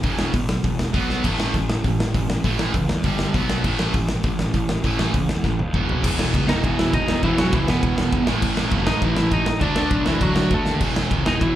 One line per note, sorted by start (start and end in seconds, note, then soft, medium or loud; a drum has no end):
0.03 0.18 E1 loud
0.03 0.32 E2 medium
0.03 0.33 B2 loud
0.03 0.33 E3 loud
0.03 kick loud
0.03 open hi-hat medium
0.18 0.33 E1 medium
0.18 snare loud
0.33 0.48 A1 medium
0.33 0.47 E2 medium
0.33 0.47 B2 medium
0.33 kick loud
0.33 open hi-hat medium
0.49 0.63 B1 medium
0.49 snare loud
0.64 0.78 E1 medium
0.64 0.77 E2 medium
0.64 0.78 B2 medium
0.64 kick loud
0.64 open hi-hat medium
0.79 0.93 E1 medium
0.79 snare loud
0.93 1.23 B1 medium
0.93 1.23 B2 medium
0.93 1.23 F#3 medium
0.93 1.24 B3 loud
0.93 kick loud
0.93 open hi-hat medium
1.10 snare medium
1.24 1.38 A1 medium
1.24 1.52 A2 medium
1.24 1.53 E3 medium
1.24 1.54 A3 medium
1.24 kick loud
1.24 crash loud
1.38 1.53 A1 medium
1.38 snare loud
1.54 1.68 A1 medium
1.54 1.67 A2 medium
1.54 1.68 E3 medium
1.54 kick loud
1.54 open hi-hat medium
1.69 1.84 A1 medium
1.69 snare loud
1.84 1.98 A1 medium
1.84 1.98 A2 medium
1.84 1.98 E3 medium
1.84 kick loud
1.84 open hi-hat medium
1.99 2.14 A1 medium
1.99 snare loud
2.14 2.28 A1 medium
2.14 2.28 A2 medium
2.14 2.28 E3 medium
2.14 kick loud
2.14 open hi-hat medium
2.29 2.43 A1 medium
2.29 snare loud
2.44 2.58 A1 loud
2.44 2.73 A2 medium
2.44 2.74 E3 medium
2.44 2.74 A3 medium
2.44 kick loud
2.44 open hi-hat medium
2.59 2.74 A1 medium
2.59 snare loud
2.74 2.88 C#2 medium
2.74 2.88 A2 medium
2.74 2.88 E3 medium
2.74 kick loud
2.74 open hi-hat medium
2.89 3.04 E2 medium
2.89 snare loud
3.04 3.19 G1 loud
3.04 3.33 G2 medium
3.04 3.34 D3 loud
3.04 3.34 G3 loud
3.04 kick loud
3.04 open hi-hat medium
3.19 3.34 G1 loud
3.19 snare loud
3.34 3.63 B1 medium
3.34 3.64 B2 medium
3.34 3.64 F#3 medium
3.34 3.64 B3 loud
3.34 kick loud
3.34 open hi-hat medium
3.50 snare loud
3.64 3.79 A1 medium
3.64 3.93 A2 medium
3.64 3.94 E3 medium
3.64 3.94 A3 loud
3.64 kick loud
3.64 crash medium
3.79 3.93 A1 medium
3.79 snare loud
3.94 4.08 A1 medium
3.94 4.08 A2 medium
3.94 4.08 E3 medium
3.94 kick loud
3.94 open hi-hat medium
4.09 4.23 A1 loud
4.09 snare loud
4.23 4.39 A1 loud
4.23 4.38 A2 medium
4.23 4.38 E3 medium
4.23 kick loud
4.23 open hi-hat medium
4.39 4.53 A1 loud
4.39 snare loud
4.54 4.68 A1 medium
4.54 4.68 A2 medium
4.54 4.68 E3 medium
4.54 kick loud
4.54 open hi-hat medium
4.69 4.83 A1 medium
4.69 snare loud
4.84 4.99 A1 medium
4.84 5.13 A2 medium
4.84 5.14 E3 medium
4.84 5.14 A3 medium
4.84 kick loud
4.84 open hi-hat medium
4.99 5.13 A1 medium
4.99 snare loud
5.14 5.28 C#2 medium
5.14 5.28 A2 medium
5.14 5.28 E3 medium
5.14 kick loud
5.14 open hi-hat medium
5.29 5.43 E2 medium
5.29 snare loud
5.44 5.59 A1 medium
5.44 5.58 A2 medium
5.44 5.58 E3 medium
5.44 kick loud
5.44 snare medium
5.59 5.73 D#2 medium
5.59 high tom medium
5.74 6.03 E1 medium
5.74 6.02 E2 medium
5.74 6.03 B2 medium
5.74 6.04 E3 loud
5.74 kick loud
5.74 mid tom medium
5.89 floor tom medium
6.03 6.18 E1 loud
6.03 6.48 E2 medium
6.03 6.48 B2 medium
6.03 6.48 E3 loud
6.03 kick loud
6.03 crash loud
6.19 6.33 E1 medium
6.19 snare loud
6.34 6.48 C#2 loud
6.34 kick loud
6.34 ride medium
6.48 6.63 E1 loud
6.48 7.21 E2 medium
6.48 7.23 B2 medium
6.48 7.26 E3 loud
6.48 6.62 D#4 medium
6.48 6.63 D#5 medium
6.48 snare loud
6.64 6.77 E1 loud
6.64 6.78 E3 medium
6.64 6.78 E4 medium
6.64 kick loud
6.64 ride medium
6.79 6.93 E1 loud
6.79 6.93 E3 medium
6.79 6.94 E4 medium
6.79 snare loud
6.93 7.07 E1 medium
6.93 7.24 D#4 loud
6.93 7.22 D#5 medium
6.93 kick loud
6.93 ride medium
7.08 7.22 E2 medium
7.08 snare loud
7.23 7.37 E1 loud
7.23 7.67 E2 medium
7.23 7.68 B2 medium
7.23 7.38 E3 medium
7.23 7.66 E3 loud
7.23 7.39 E4 loud
7.23 kick loud
7.23 ride medium
7.38 7.52 E1 medium
7.38 7.52 F#3 medium
7.38 7.54 F#4 loud
7.38 snare loud
7.53 7.67 C#2 loud
7.53 7.68 E3 medium
7.53 7.67 E4 loud
7.53 kick loud
7.53 ride medium
7.67 7.82 E1 medium
7.67 8.28 E2 medium
7.67 8.26 B2 medium
7.67 8.26 E3 medium
7.67 8.25 B3 medium
7.67 8.25 B4 medium
7.67 snare loud
7.83 7.97 E1 medium
7.83 kick loud
7.83 ride medium
7.98 8.12 E1 loud
7.98 snare loud
8.13 8.26 E1 medium
8.13 kick loud
8.13 ride medium
8.26 8.41 A1 loud
8.26 8.70 A2 loud
8.26 8.71 E3 loud
8.26 8.74 A3 loud
8.26 snare loud
8.42 8.56 A1 loud
8.42 kick loud
8.42 crash loud
8.57 8.71 A1 medium
8.57 snare loud
8.71 8.86 F#1 loud
8.71 9.46 A2 medium
8.71 9.46 E3 medium
8.71 9.47 A3 medium
8.71 kick loud
8.71 ride medium
8.87 9.01 A1 loud
8.87 9.03 D#4 medium
8.87 9.03 D#5 medium
8.87 snare loud
9.02 9.16 A1 loud
9.02 9.17 E3 medium
9.02 9.17 E4 medium
9.02 kick loud
9.02 ride medium
9.16 9.31 A1 loud
9.16 9.32 E3 medium
9.16 9.32 E4 medium
9.16 snare loud
9.32 9.46 A1 loud
9.32 9.61 D#4 medium
9.32 9.61 D#5 medium
9.32 kick loud
9.32 ride medium
9.46 9.60 A2 medium
9.46 snare loud
9.60 9.75 D2 loud
9.60 10.05 D3 medium
9.60 10.06 A3 medium
9.60 9.76 D4 loud
9.60 10.05 D4 loud
9.60 9.76 D5 medium
9.60 kick loud
9.60 ride medium
9.76 9.90 D2 medium
9.76 10.08 D4 loud
9.76 10.06 D5 medium
9.76 snare loud
9.90 10.05 B1 loud
9.90 kick loud
9.90 ride medium
10.06 10.20 D2 medium
10.06 10.82 D3 medium
10.06 10.21 E3 medium
10.06 10.81 A3 medium
10.06 10.80 D4 medium
10.06 10.22 E4 medium
10.06 snare loud
10.21 10.35 D2 loud
10.21 10.50 F#3 medium
10.21 10.53 F#4 medium
10.21 kick loud
10.21 ride medium
10.36 10.50 D2 loud
10.36 snare loud
10.51 10.65 D2 medium
10.51 10.73 A3 medium
10.51 10.74 A4 loud
10.51 kick loud
10.51 ride medium
10.66 10.80 D#2 medium
10.66 snare medium
10.80 10.95 E1 loud
10.80 11.25 E2 medium
10.80 11.26 B2 medium
10.80 11.25 E3 medium
10.80 kick loud
10.80 crash loud
10.96 11.10 E1 medium
10.96 snare loud
11.11 11.25 C#2 medium
11.11 kick loud
11.11 ride medium
11.25 11.40 E1 medium
11.25 11.55 E2 medium
11.25 11.55 B2 medium
11.25 11.55 E3 medium
11.25 11.41 D#4 medium
11.25 11.41 D#5 medium
11.25 snare loud
11.41 11.55 E1 loud
11.41 11.55 E3 medium
11.41 11.55 E4 medium
11.41 kick loud
11.41 ride medium